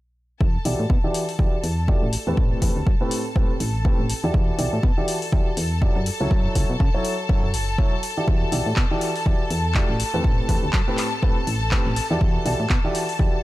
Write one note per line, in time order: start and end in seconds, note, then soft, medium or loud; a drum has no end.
0.41 0.58 E2 medium
0.41 13.43 A4 medium
0.41 13.43 A5 medium
0.41 kick loud
0.65 0.74 B1 medium
0.65 0.79 E3 medium
0.65 0.79 E4 medium
0.65 0.79 F#4 medium
0.65 0.79 G4 medium
0.65 0.79 D5 medium
0.65 open hi-hat loud
0.80 0.86 A2 medium
0.90 0.99 B2 loud
0.90 kick loud
1.04 1.22 E3 medium
1.04 1.22 E4 medium
1.04 1.22 F#4 medium
1.04 1.22 G4 medium
1.04 1.22 D5 loud
1.14 open hi-hat loud
1.29 open hi-hat medium
1.39 1.48 E2 medium
1.39 1.53 E3 medium
1.39 1.53 E4 medium
1.39 1.53 F#4 medium
1.39 1.53 G4 medium
1.39 1.53 D5 loud
1.39 kick loud
1.64 1.94 E2 medium
1.64 open hi-hat loud
1.88 2.02 A3 medium
1.88 2.02 E4 medium
1.88 2.02 F#4 medium
1.88 2.02 G4 medium
1.88 2.02 D5 loud
1.88 kick loud
2.02 2.17 A1 medium
2.13 open hi-hat loud
2.27 2.34 E2 medium
2.27 2.59 A2 medium
2.27 2.59 C4 medium
2.27 2.59 G4 medium
2.27 2.60 A4 medium
2.27 2.59 B4 medium
2.37 2.55 A1 loud
2.37 kick loud
2.62 2.71 E2 medium
2.62 2.76 A2 medium
2.62 2.76 C4 medium
2.62 2.76 G4 medium
2.62 2.76 A4 medium
2.62 2.76 B4 medium
2.62 kick medium
2.62 open hi-hat loud
2.76 2.83 D2 medium
2.87 2.96 F#2 medium
2.87 kick loud
3.01 3.19 A2 medium
3.01 3.19 C4 medium
3.01 3.19 G4 medium
3.01 3.19 A4 medium
3.01 3.19 B4 loud
3.11 open hi-hat loud
3.36 3.45 A1 medium
3.36 3.50 A2 medium
3.36 3.50 C4 medium
3.36 3.50 G4 medium
3.36 3.50 A4 medium
3.36 3.50 B4 loud
3.36 kick loud
3.60 3.91 A1 loud
3.60 open hi-hat loud
3.85 3.99 A2 medium
3.85 3.99 C4 medium
3.85 3.99 G4 medium
3.85 3.99 A4 medium
3.85 3.99 B4 loud
3.85 kick loud
3.99 4.13 A1 medium
4.10 open hi-hat loud
4.24 4.30 E2 medium
4.24 4.56 E3 medium
4.24 4.56 E4 medium
4.24 4.56 F#4 medium
4.24 4.56 G4 medium
4.24 4.56 D5 medium
4.34 4.51 E2 loud
4.34 kick loud
4.59 4.68 B1 medium
4.59 4.73 E3 medium
4.59 4.73 E4 medium
4.59 4.73 F#4 medium
4.59 4.73 G4 medium
4.59 4.73 D5 medium
4.59 open hi-hat loud
4.73 4.80 A2 medium
4.83 4.92 B2 loud
4.83 kick loud
4.98 5.16 E3 medium
4.98 5.16 E4 medium
4.98 5.16 F#4 medium
4.98 5.16 G4 medium
4.98 5.16 D5 loud
5.08 open hi-hat loud
5.22 open hi-hat medium
5.32 5.42 E2 medium
5.32 5.46 E3 medium
5.32 5.46 E4 medium
5.32 5.46 F#4 medium
5.32 5.46 G4 medium
5.32 5.46 D5 loud
5.32 kick loud
5.57 5.88 E2 loud
5.57 open hi-hat loud
5.82 5.96 F#3 medium
5.82 5.96 E4 medium
5.82 5.96 F#4 medium
5.82 5.96 G4 medium
5.82 5.96 D5 loud
5.82 kick loud
5.96 6.10 F#2 medium
6.06 open hi-hat loud
6.21 6.27 C#2 medium
6.21 6.53 F#3 medium
6.21 6.53 E4 medium
6.21 6.53 F#4 medium
6.21 6.53 A4 medium
6.21 6.53 C#5 medium
6.31 6.48 F#2 loud
6.31 kick loud
6.55 6.65 C#2 medium
6.55 6.69 F#3 medium
6.55 6.69 E4 medium
6.55 6.69 F#4 medium
6.55 6.69 A4 medium
6.55 6.69 C#5 medium
6.55 kick medium
6.55 open hi-hat loud
6.70 6.76 B2 medium
6.80 6.89 C#3 loud
6.80 kick loud
6.94 7.13 F#3 medium
6.94 7.13 E4 medium
6.94 7.13 F#4 medium
6.94 7.13 A4 medium
6.94 7.13 C#5 loud
7.05 open hi-hat loud
7.29 7.55 F#2 medium
7.29 7.43 F#3 medium
7.29 7.43 E4 medium
7.29 7.43 F#4 medium
7.29 7.43 A4 medium
7.29 7.43 C#5 loud
7.29 kick loud
7.54 7.84 F#1 medium
7.54 open hi-hat loud
7.78 7.92 F#3 medium
7.78 7.92 E4 medium
7.78 7.92 F#4 medium
7.78 7.92 A4 medium
7.78 7.92 C#5 loud
7.78 kick loud
8.03 open hi-hat loud
8.17 8.50 E3 medium
8.17 8.50 E4 medium
8.17 8.50 F#4 medium
8.17 8.50 G4 medium
8.17 8.50 D5 medium
8.28 8.45 E2 loud
8.28 kick loud
8.52 8.61 B1 medium
8.52 8.66 E3 medium
8.52 8.66 E4 medium
8.52 8.66 F#4 medium
8.52 8.66 G4 medium
8.52 8.66 D5 medium
8.52 open hi-hat loud
8.66 8.73 A2 medium
8.76 8.86 B2 loud
8.76 kick loud
8.76 clap loud
8.91 9.09 E3 medium
8.91 9.09 E4 medium
8.91 9.09 F#4 medium
8.91 9.09 G4 medium
8.91 9.09 D5 loud
9.01 open hi-hat loud
9.16 open hi-hat medium
9.26 9.35 E2 medium
9.26 9.40 E3 medium
9.26 9.40 E4 medium
9.26 9.40 F#4 medium
9.26 9.40 G4 medium
9.26 9.40 D5 loud
9.26 kick loud
9.50 9.81 E2 loud
9.50 open hi-hat loud
9.75 9.89 A3 medium
9.75 9.89 E4 medium
9.75 9.89 F#4 medium
9.75 9.89 G4 medium
9.75 9.89 D5 loud
9.75 kick loud
9.75 clap loud
9.89 10.04 A1 medium
10.00 open hi-hat loud
10.14 10.21 E2 medium
10.14 10.46 A2 medium
10.14 10.46 C4 medium
10.14 10.46 G4 medium
10.14 10.46 A4 medium
10.14 10.46 B4 medium
10.24 10.41 A1 loud
10.24 kick loud
10.49 10.58 E2 medium
10.49 10.63 A2 medium
10.49 10.63 C4 medium
10.49 10.63 G4 medium
10.49 10.63 A4 medium
10.49 10.63 B4 medium
10.49 kick medium
10.49 open hi-hat loud
10.63 10.70 D2 medium
10.73 10.83 F#2 loud
10.73 kick loud
10.73 clap loud
10.88 11.06 A2 medium
10.88 11.06 C4 medium
10.88 11.06 G4 medium
10.88 11.06 A4 medium
10.88 11.06 B4 loud
10.97 clap medium
10.97 open hi-hat loud
11.23 11.32 A1 medium
11.23 11.37 A2 medium
11.23 11.37 C4 medium
11.23 11.37 G4 medium
11.23 11.37 A4 medium
11.23 11.37 B4 loud
11.23 kick loud
11.47 11.78 A1 medium
11.47 open hi-hat loud
11.71 11.86 A2 medium
11.71 11.86 C4 medium
11.71 11.86 G4 medium
11.71 11.86 A4 medium
11.71 11.86 B4 loud
11.71 kick loud
11.71 clap loud
11.86 12.00 A1 medium
11.96 open hi-hat loud
12.11 12.17 E2 loud
12.11 12.43 E3 medium
12.11 12.43 E4 medium
12.11 12.43 F#4 medium
12.11 12.43 G4 medium
12.11 12.43 D5 medium
12.21 12.38 E2 loud
12.21 kick loud
12.45 12.55 B1 medium
12.45 12.59 E3 medium
12.45 12.59 E4 medium
12.45 12.59 F#4 medium
12.45 12.59 G4 medium
12.45 12.59 D5 medium
12.45 open hi-hat loud
12.60 12.66 A2 medium
12.70 12.79 B2 loud
12.70 kick loud
12.70 clap loud
12.84 13.03 E3 medium
12.84 13.03 E4 medium
12.84 13.03 F#4 medium
12.84 13.03 G4 medium
12.84 13.03 D5 loud
12.95 open hi-hat loud
13.09 open hi-hat medium
13.19 13.28 E2 medium
13.19 13.33 E3 medium
13.19 13.33 E4 medium
13.19 13.33 F#4 medium
13.19 13.33 G4 medium
13.19 13.33 D5 loud
13.19 kick loud